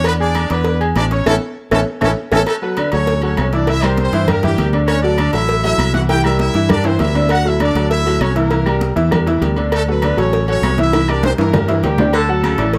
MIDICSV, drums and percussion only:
0, 0, Header, 1, 2, 480
1, 0, Start_track
1, 0, Key_signature, 2, "major"
1, 0, Tempo, 301963
1, 86, Time_signature, 4, 2, 24, 8
1, 20320, End_track
2, 0, Start_track
2, 0, Title_t, "Drums"
2, 68, Note_on_c, 9, 56, 106
2, 76, Note_on_c, 9, 68, 101
2, 85, Note_on_c, 9, 75, 72
2, 227, Note_off_c, 9, 56, 0
2, 235, Note_off_c, 9, 68, 0
2, 244, Note_off_c, 9, 75, 0
2, 328, Note_on_c, 9, 63, 38
2, 487, Note_off_c, 9, 63, 0
2, 552, Note_on_c, 9, 56, 76
2, 560, Note_on_c, 9, 68, 111
2, 570, Note_on_c, 9, 63, 60
2, 572, Note_on_c, 9, 75, 68
2, 711, Note_off_c, 9, 56, 0
2, 718, Note_off_c, 9, 68, 0
2, 729, Note_off_c, 9, 63, 0
2, 731, Note_off_c, 9, 75, 0
2, 795, Note_on_c, 9, 56, 85
2, 808, Note_on_c, 9, 68, 81
2, 812, Note_on_c, 9, 63, 40
2, 954, Note_off_c, 9, 56, 0
2, 967, Note_off_c, 9, 68, 0
2, 971, Note_off_c, 9, 63, 0
2, 1025, Note_on_c, 9, 56, 116
2, 1058, Note_on_c, 9, 63, 38
2, 1184, Note_off_c, 9, 56, 0
2, 1217, Note_off_c, 9, 63, 0
2, 1286, Note_on_c, 9, 68, 67
2, 1288, Note_on_c, 9, 63, 33
2, 1445, Note_off_c, 9, 68, 0
2, 1447, Note_off_c, 9, 63, 0
2, 1519, Note_on_c, 9, 56, 77
2, 1528, Note_on_c, 9, 63, 85
2, 1530, Note_on_c, 9, 66, 83
2, 1530, Note_on_c, 9, 68, 105
2, 1536, Note_on_c, 9, 75, 73
2, 1678, Note_off_c, 9, 56, 0
2, 1687, Note_off_c, 9, 63, 0
2, 1689, Note_off_c, 9, 66, 0
2, 1689, Note_off_c, 9, 68, 0
2, 1695, Note_off_c, 9, 75, 0
2, 1765, Note_on_c, 9, 56, 74
2, 1924, Note_off_c, 9, 56, 0
2, 2008, Note_on_c, 9, 56, 101
2, 2011, Note_on_c, 9, 63, 107
2, 2011, Note_on_c, 9, 65, 106
2, 2011, Note_on_c, 9, 75, 110
2, 2167, Note_off_c, 9, 56, 0
2, 2170, Note_off_c, 9, 63, 0
2, 2170, Note_off_c, 9, 65, 0
2, 2170, Note_off_c, 9, 75, 0
2, 2724, Note_on_c, 9, 56, 109
2, 2731, Note_on_c, 9, 75, 113
2, 2738, Note_on_c, 9, 63, 113
2, 2738, Note_on_c, 9, 65, 109
2, 2883, Note_off_c, 9, 56, 0
2, 2890, Note_off_c, 9, 75, 0
2, 2897, Note_off_c, 9, 63, 0
2, 2897, Note_off_c, 9, 65, 0
2, 3200, Note_on_c, 9, 56, 99
2, 3207, Note_on_c, 9, 75, 102
2, 3209, Note_on_c, 9, 63, 102
2, 3211, Note_on_c, 9, 65, 106
2, 3359, Note_off_c, 9, 56, 0
2, 3366, Note_off_c, 9, 75, 0
2, 3368, Note_off_c, 9, 63, 0
2, 3370, Note_off_c, 9, 65, 0
2, 3681, Note_on_c, 9, 56, 111
2, 3692, Note_on_c, 9, 63, 105
2, 3692, Note_on_c, 9, 65, 109
2, 3698, Note_on_c, 9, 75, 104
2, 3840, Note_off_c, 9, 56, 0
2, 3851, Note_off_c, 9, 63, 0
2, 3851, Note_off_c, 9, 65, 0
2, 3857, Note_off_c, 9, 75, 0
2, 3919, Note_on_c, 9, 56, 103
2, 3923, Note_on_c, 9, 68, 109
2, 3930, Note_on_c, 9, 63, 34
2, 3943, Note_on_c, 9, 75, 68
2, 4078, Note_off_c, 9, 56, 0
2, 4082, Note_off_c, 9, 68, 0
2, 4089, Note_off_c, 9, 63, 0
2, 4101, Note_off_c, 9, 75, 0
2, 4176, Note_on_c, 9, 63, 38
2, 4335, Note_off_c, 9, 63, 0
2, 4398, Note_on_c, 9, 56, 80
2, 4406, Note_on_c, 9, 68, 115
2, 4412, Note_on_c, 9, 63, 55
2, 4414, Note_on_c, 9, 75, 67
2, 4557, Note_off_c, 9, 56, 0
2, 4565, Note_off_c, 9, 68, 0
2, 4571, Note_off_c, 9, 63, 0
2, 4573, Note_off_c, 9, 75, 0
2, 4636, Note_on_c, 9, 68, 80
2, 4638, Note_on_c, 9, 56, 75
2, 4655, Note_on_c, 9, 63, 38
2, 4795, Note_off_c, 9, 68, 0
2, 4797, Note_off_c, 9, 56, 0
2, 4814, Note_off_c, 9, 63, 0
2, 4884, Note_on_c, 9, 56, 122
2, 4897, Note_on_c, 9, 63, 36
2, 5043, Note_off_c, 9, 56, 0
2, 5056, Note_off_c, 9, 63, 0
2, 5112, Note_on_c, 9, 68, 69
2, 5138, Note_on_c, 9, 63, 35
2, 5271, Note_off_c, 9, 68, 0
2, 5297, Note_off_c, 9, 63, 0
2, 5362, Note_on_c, 9, 66, 74
2, 5362, Note_on_c, 9, 68, 109
2, 5363, Note_on_c, 9, 56, 71
2, 5372, Note_on_c, 9, 75, 72
2, 5376, Note_on_c, 9, 63, 88
2, 5521, Note_off_c, 9, 56, 0
2, 5521, Note_off_c, 9, 66, 0
2, 5521, Note_off_c, 9, 68, 0
2, 5531, Note_off_c, 9, 75, 0
2, 5535, Note_off_c, 9, 63, 0
2, 5606, Note_on_c, 9, 56, 69
2, 5765, Note_off_c, 9, 56, 0
2, 5838, Note_on_c, 9, 56, 110
2, 5846, Note_on_c, 9, 68, 85
2, 5853, Note_on_c, 9, 63, 37
2, 5997, Note_off_c, 9, 56, 0
2, 6005, Note_off_c, 9, 68, 0
2, 6012, Note_off_c, 9, 63, 0
2, 6079, Note_on_c, 9, 68, 109
2, 6089, Note_on_c, 9, 63, 34
2, 6092, Note_on_c, 9, 75, 77
2, 6238, Note_off_c, 9, 68, 0
2, 6248, Note_off_c, 9, 63, 0
2, 6251, Note_off_c, 9, 75, 0
2, 6318, Note_on_c, 9, 56, 70
2, 6325, Note_on_c, 9, 63, 92
2, 6477, Note_off_c, 9, 56, 0
2, 6483, Note_off_c, 9, 63, 0
2, 6563, Note_on_c, 9, 56, 76
2, 6722, Note_off_c, 9, 56, 0
2, 6799, Note_on_c, 9, 68, 111
2, 6800, Note_on_c, 9, 63, 38
2, 6800, Note_on_c, 9, 64, 86
2, 6803, Note_on_c, 9, 56, 113
2, 6808, Note_on_c, 9, 75, 69
2, 6958, Note_off_c, 9, 68, 0
2, 6959, Note_off_c, 9, 63, 0
2, 6959, Note_off_c, 9, 64, 0
2, 6962, Note_off_c, 9, 56, 0
2, 6967, Note_off_c, 9, 75, 0
2, 7041, Note_on_c, 9, 56, 71
2, 7046, Note_on_c, 9, 63, 37
2, 7046, Note_on_c, 9, 64, 76
2, 7200, Note_off_c, 9, 56, 0
2, 7205, Note_off_c, 9, 63, 0
2, 7205, Note_off_c, 9, 64, 0
2, 7283, Note_on_c, 9, 56, 76
2, 7283, Note_on_c, 9, 63, 83
2, 7287, Note_on_c, 9, 68, 72
2, 7442, Note_off_c, 9, 56, 0
2, 7442, Note_off_c, 9, 63, 0
2, 7446, Note_off_c, 9, 68, 0
2, 7519, Note_on_c, 9, 63, 85
2, 7523, Note_on_c, 9, 68, 84
2, 7678, Note_off_c, 9, 63, 0
2, 7682, Note_off_c, 9, 68, 0
2, 7754, Note_on_c, 9, 68, 109
2, 7758, Note_on_c, 9, 56, 99
2, 7760, Note_on_c, 9, 75, 72
2, 7762, Note_on_c, 9, 63, 35
2, 7913, Note_off_c, 9, 68, 0
2, 7917, Note_off_c, 9, 56, 0
2, 7919, Note_off_c, 9, 75, 0
2, 7921, Note_off_c, 9, 63, 0
2, 8010, Note_on_c, 9, 63, 39
2, 8169, Note_off_c, 9, 63, 0
2, 8230, Note_on_c, 9, 68, 111
2, 8238, Note_on_c, 9, 56, 77
2, 8242, Note_on_c, 9, 75, 61
2, 8249, Note_on_c, 9, 63, 57
2, 8389, Note_off_c, 9, 68, 0
2, 8397, Note_off_c, 9, 56, 0
2, 8401, Note_off_c, 9, 75, 0
2, 8408, Note_off_c, 9, 63, 0
2, 8472, Note_on_c, 9, 56, 70
2, 8474, Note_on_c, 9, 68, 90
2, 8631, Note_off_c, 9, 56, 0
2, 8633, Note_off_c, 9, 68, 0
2, 8724, Note_on_c, 9, 56, 113
2, 8730, Note_on_c, 9, 63, 37
2, 8883, Note_off_c, 9, 56, 0
2, 8889, Note_off_c, 9, 63, 0
2, 8960, Note_on_c, 9, 68, 70
2, 8966, Note_on_c, 9, 63, 37
2, 9119, Note_off_c, 9, 68, 0
2, 9125, Note_off_c, 9, 63, 0
2, 9203, Note_on_c, 9, 63, 85
2, 9203, Note_on_c, 9, 68, 104
2, 9210, Note_on_c, 9, 56, 73
2, 9217, Note_on_c, 9, 75, 65
2, 9361, Note_off_c, 9, 68, 0
2, 9362, Note_off_c, 9, 63, 0
2, 9369, Note_off_c, 9, 56, 0
2, 9376, Note_off_c, 9, 75, 0
2, 9441, Note_on_c, 9, 56, 67
2, 9446, Note_on_c, 9, 63, 66
2, 9600, Note_off_c, 9, 56, 0
2, 9605, Note_off_c, 9, 63, 0
2, 9683, Note_on_c, 9, 56, 97
2, 9689, Note_on_c, 9, 63, 35
2, 9691, Note_on_c, 9, 68, 90
2, 9842, Note_off_c, 9, 56, 0
2, 9848, Note_off_c, 9, 63, 0
2, 9850, Note_off_c, 9, 68, 0
2, 9918, Note_on_c, 9, 68, 106
2, 9932, Note_on_c, 9, 75, 72
2, 9933, Note_on_c, 9, 63, 40
2, 10077, Note_off_c, 9, 68, 0
2, 10091, Note_off_c, 9, 75, 0
2, 10092, Note_off_c, 9, 63, 0
2, 10159, Note_on_c, 9, 56, 74
2, 10166, Note_on_c, 9, 63, 86
2, 10318, Note_off_c, 9, 56, 0
2, 10325, Note_off_c, 9, 63, 0
2, 10396, Note_on_c, 9, 56, 70
2, 10409, Note_on_c, 9, 63, 37
2, 10555, Note_off_c, 9, 56, 0
2, 10568, Note_off_c, 9, 63, 0
2, 10638, Note_on_c, 9, 68, 109
2, 10644, Note_on_c, 9, 56, 110
2, 10647, Note_on_c, 9, 63, 39
2, 10647, Note_on_c, 9, 64, 92
2, 10657, Note_on_c, 9, 75, 70
2, 10797, Note_off_c, 9, 68, 0
2, 10803, Note_off_c, 9, 56, 0
2, 10806, Note_off_c, 9, 63, 0
2, 10806, Note_off_c, 9, 64, 0
2, 10815, Note_off_c, 9, 75, 0
2, 10872, Note_on_c, 9, 56, 71
2, 10885, Note_on_c, 9, 65, 85
2, 10893, Note_on_c, 9, 63, 38
2, 11031, Note_off_c, 9, 56, 0
2, 11044, Note_off_c, 9, 65, 0
2, 11052, Note_off_c, 9, 63, 0
2, 11114, Note_on_c, 9, 56, 79
2, 11128, Note_on_c, 9, 66, 80
2, 11128, Note_on_c, 9, 68, 70
2, 11133, Note_on_c, 9, 63, 89
2, 11273, Note_off_c, 9, 56, 0
2, 11287, Note_off_c, 9, 66, 0
2, 11287, Note_off_c, 9, 68, 0
2, 11292, Note_off_c, 9, 63, 0
2, 11369, Note_on_c, 9, 63, 81
2, 11370, Note_on_c, 9, 66, 81
2, 11370, Note_on_c, 9, 68, 83
2, 11528, Note_off_c, 9, 63, 0
2, 11529, Note_off_c, 9, 66, 0
2, 11529, Note_off_c, 9, 68, 0
2, 11591, Note_on_c, 9, 56, 104
2, 11605, Note_on_c, 9, 63, 33
2, 11607, Note_on_c, 9, 68, 107
2, 11619, Note_on_c, 9, 75, 67
2, 11750, Note_off_c, 9, 56, 0
2, 11764, Note_off_c, 9, 63, 0
2, 11766, Note_off_c, 9, 68, 0
2, 11778, Note_off_c, 9, 75, 0
2, 11851, Note_on_c, 9, 63, 38
2, 12010, Note_off_c, 9, 63, 0
2, 12082, Note_on_c, 9, 56, 75
2, 12087, Note_on_c, 9, 68, 104
2, 12088, Note_on_c, 9, 63, 63
2, 12089, Note_on_c, 9, 75, 69
2, 12241, Note_off_c, 9, 56, 0
2, 12246, Note_off_c, 9, 68, 0
2, 12247, Note_off_c, 9, 63, 0
2, 12248, Note_off_c, 9, 75, 0
2, 12326, Note_on_c, 9, 56, 79
2, 12333, Note_on_c, 9, 63, 38
2, 12342, Note_on_c, 9, 68, 81
2, 12485, Note_off_c, 9, 56, 0
2, 12492, Note_off_c, 9, 63, 0
2, 12501, Note_off_c, 9, 68, 0
2, 12572, Note_on_c, 9, 56, 110
2, 12576, Note_on_c, 9, 63, 37
2, 12731, Note_off_c, 9, 56, 0
2, 12735, Note_off_c, 9, 63, 0
2, 12818, Note_on_c, 9, 63, 36
2, 12826, Note_on_c, 9, 68, 76
2, 12977, Note_off_c, 9, 63, 0
2, 12985, Note_off_c, 9, 68, 0
2, 13049, Note_on_c, 9, 56, 71
2, 13049, Note_on_c, 9, 63, 86
2, 13049, Note_on_c, 9, 75, 71
2, 13059, Note_on_c, 9, 68, 105
2, 13207, Note_off_c, 9, 63, 0
2, 13208, Note_off_c, 9, 56, 0
2, 13208, Note_off_c, 9, 75, 0
2, 13218, Note_off_c, 9, 68, 0
2, 13289, Note_on_c, 9, 56, 74
2, 13448, Note_off_c, 9, 56, 0
2, 13521, Note_on_c, 9, 56, 97
2, 13522, Note_on_c, 9, 63, 38
2, 13531, Note_on_c, 9, 68, 82
2, 13680, Note_off_c, 9, 56, 0
2, 13681, Note_off_c, 9, 63, 0
2, 13690, Note_off_c, 9, 68, 0
2, 13765, Note_on_c, 9, 75, 77
2, 13771, Note_on_c, 9, 68, 102
2, 13773, Note_on_c, 9, 63, 39
2, 13924, Note_off_c, 9, 75, 0
2, 13930, Note_off_c, 9, 68, 0
2, 13932, Note_off_c, 9, 63, 0
2, 14006, Note_on_c, 9, 56, 73
2, 14008, Note_on_c, 9, 63, 101
2, 14165, Note_off_c, 9, 56, 0
2, 14167, Note_off_c, 9, 63, 0
2, 14254, Note_on_c, 9, 56, 77
2, 14257, Note_on_c, 9, 63, 38
2, 14413, Note_off_c, 9, 56, 0
2, 14416, Note_off_c, 9, 63, 0
2, 14487, Note_on_c, 9, 75, 72
2, 14495, Note_on_c, 9, 68, 116
2, 14497, Note_on_c, 9, 56, 113
2, 14497, Note_on_c, 9, 63, 39
2, 14497, Note_on_c, 9, 64, 91
2, 14646, Note_off_c, 9, 75, 0
2, 14654, Note_off_c, 9, 68, 0
2, 14656, Note_off_c, 9, 56, 0
2, 14656, Note_off_c, 9, 63, 0
2, 14656, Note_off_c, 9, 64, 0
2, 14737, Note_on_c, 9, 63, 33
2, 14740, Note_on_c, 9, 56, 70
2, 14896, Note_off_c, 9, 63, 0
2, 14899, Note_off_c, 9, 56, 0
2, 14969, Note_on_c, 9, 68, 70
2, 14975, Note_on_c, 9, 63, 88
2, 14977, Note_on_c, 9, 56, 72
2, 15128, Note_off_c, 9, 68, 0
2, 15134, Note_off_c, 9, 63, 0
2, 15136, Note_off_c, 9, 56, 0
2, 15204, Note_on_c, 9, 68, 84
2, 15226, Note_on_c, 9, 63, 77
2, 15363, Note_off_c, 9, 68, 0
2, 15385, Note_off_c, 9, 63, 0
2, 15450, Note_on_c, 9, 68, 102
2, 15456, Note_on_c, 9, 56, 109
2, 15460, Note_on_c, 9, 75, 75
2, 15466, Note_on_c, 9, 63, 35
2, 15609, Note_off_c, 9, 68, 0
2, 15615, Note_off_c, 9, 56, 0
2, 15619, Note_off_c, 9, 75, 0
2, 15624, Note_off_c, 9, 63, 0
2, 15714, Note_on_c, 9, 63, 39
2, 15873, Note_off_c, 9, 63, 0
2, 15928, Note_on_c, 9, 68, 102
2, 15933, Note_on_c, 9, 56, 73
2, 15939, Note_on_c, 9, 75, 61
2, 15953, Note_on_c, 9, 63, 59
2, 16087, Note_off_c, 9, 68, 0
2, 16092, Note_off_c, 9, 56, 0
2, 16098, Note_off_c, 9, 75, 0
2, 16112, Note_off_c, 9, 63, 0
2, 16173, Note_on_c, 9, 68, 76
2, 16186, Note_on_c, 9, 56, 76
2, 16192, Note_on_c, 9, 63, 38
2, 16332, Note_off_c, 9, 68, 0
2, 16345, Note_off_c, 9, 56, 0
2, 16351, Note_off_c, 9, 63, 0
2, 16423, Note_on_c, 9, 56, 122
2, 16433, Note_on_c, 9, 63, 37
2, 16582, Note_off_c, 9, 56, 0
2, 16592, Note_off_c, 9, 63, 0
2, 16660, Note_on_c, 9, 68, 72
2, 16676, Note_on_c, 9, 63, 39
2, 16819, Note_off_c, 9, 68, 0
2, 16835, Note_off_c, 9, 63, 0
2, 16900, Note_on_c, 9, 56, 77
2, 16903, Note_on_c, 9, 75, 67
2, 16905, Note_on_c, 9, 66, 75
2, 16905, Note_on_c, 9, 68, 111
2, 16911, Note_on_c, 9, 63, 93
2, 17059, Note_off_c, 9, 56, 0
2, 17062, Note_off_c, 9, 75, 0
2, 17064, Note_off_c, 9, 66, 0
2, 17064, Note_off_c, 9, 68, 0
2, 17070, Note_off_c, 9, 63, 0
2, 17136, Note_on_c, 9, 56, 71
2, 17145, Note_on_c, 9, 63, 79
2, 17295, Note_off_c, 9, 56, 0
2, 17304, Note_off_c, 9, 63, 0
2, 17379, Note_on_c, 9, 56, 108
2, 17379, Note_on_c, 9, 60, 80
2, 17380, Note_on_c, 9, 68, 91
2, 17391, Note_on_c, 9, 63, 33
2, 17538, Note_off_c, 9, 56, 0
2, 17538, Note_off_c, 9, 60, 0
2, 17539, Note_off_c, 9, 68, 0
2, 17550, Note_off_c, 9, 63, 0
2, 17615, Note_on_c, 9, 75, 70
2, 17623, Note_on_c, 9, 68, 99
2, 17632, Note_on_c, 9, 63, 34
2, 17774, Note_off_c, 9, 75, 0
2, 17782, Note_off_c, 9, 68, 0
2, 17791, Note_off_c, 9, 63, 0
2, 17854, Note_on_c, 9, 56, 71
2, 17854, Note_on_c, 9, 60, 84
2, 17857, Note_on_c, 9, 65, 80
2, 17861, Note_on_c, 9, 63, 99
2, 18013, Note_off_c, 9, 56, 0
2, 18013, Note_off_c, 9, 60, 0
2, 18016, Note_off_c, 9, 65, 0
2, 18020, Note_off_c, 9, 63, 0
2, 18094, Note_on_c, 9, 56, 74
2, 18096, Note_on_c, 9, 65, 104
2, 18101, Note_on_c, 9, 63, 39
2, 18253, Note_off_c, 9, 56, 0
2, 18255, Note_off_c, 9, 65, 0
2, 18260, Note_off_c, 9, 63, 0
2, 18334, Note_on_c, 9, 65, 76
2, 18334, Note_on_c, 9, 68, 117
2, 18339, Note_on_c, 9, 56, 114
2, 18339, Note_on_c, 9, 61, 118
2, 18339, Note_on_c, 9, 63, 38
2, 18339, Note_on_c, 9, 64, 86
2, 18339, Note_on_c, 9, 75, 73
2, 18493, Note_off_c, 9, 65, 0
2, 18493, Note_off_c, 9, 68, 0
2, 18498, Note_off_c, 9, 56, 0
2, 18498, Note_off_c, 9, 61, 0
2, 18498, Note_off_c, 9, 63, 0
2, 18498, Note_off_c, 9, 64, 0
2, 18498, Note_off_c, 9, 75, 0
2, 18575, Note_on_c, 9, 56, 72
2, 18576, Note_on_c, 9, 66, 83
2, 18577, Note_on_c, 9, 63, 36
2, 18734, Note_off_c, 9, 56, 0
2, 18735, Note_off_c, 9, 66, 0
2, 18736, Note_off_c, 9, 63, 0
2, 18807, Note_on_c, 9, 63, 81
2, 18814, Note_on_c, 9, 56, 69
2, 18818, Note_on_c, 9, 66, 72
2, 18818, Note_on_c, 9, 68, 68
2, 18966, Note_off_c, 9, 63, 0
2, 18973, Note_off_c, 9, 56, 0
2, 18977, Note_off_c, 9, 66, 0
2, 18977, Note_off_c, 9, 68, 0
2, 19044, Note_on_c, 9, 63, 88
2, 19048, Note_on_c, 9, 66, 86
2, 19048, Note_on_c, 9, 68, 83
2, 19049, Note_on_c, 9, 61, 113
2, 19203, Note_off_c, 9, 63, 0
2, 19207, Note_off_c, 9, 66, 0
2, 19207, Note_off_c, 9, 68, 0
2, 19208, Note_off_c, 9, 61, 0
2, 19284, Note_on_c, 9, 68, 107
2, 19288, Note_on_c, 9, 63, 36
2, 19292, Note_on_c, 9, 56, 116
2, 19295, Note_on_c, 9, 75, 68
2, 19443, Note_off_c, 9, 68, 0
2, 19447, Note_off_c, 9, 63, 0
2, 19451, Note_off_c, 9, 56, 0
2, 19454, Note_off_c, 9, 75, 0
2, 19766, Note_on_c, 9, 75, 66
2, 19767, Note_on_c, 9, 68, 105
2, 19769, Note_on_c, 9, 63, 63
2, 19772, Note_on_c, 9, 56, 78
2, 19925, Note_off_c, 9, 75, 0
2, 19926, Note_off_c, 9, 68, 0
2, 19928, Note_off_c, 9, 63, 0
2, 19931, Note_off_c, 9, 56, 0
2, 19998, Note_on_c, 9, 56, 80
2, 20007, Note_on_c, 9, 68, 83
2, 20157, Note_off_c, 9, 56, 0
2, 20165, Note_off_c, 9, 68, 0
2, 20243, Note_on_c, 9, 56, 124
2, 20259, Note_on_c, 9, 63, 36
2, 20320, Note_off_c, 9, 56, 0
2, 20320, Note_off_c, 9, 63, 0
2, 20320, End_track
0, 0, End_of_file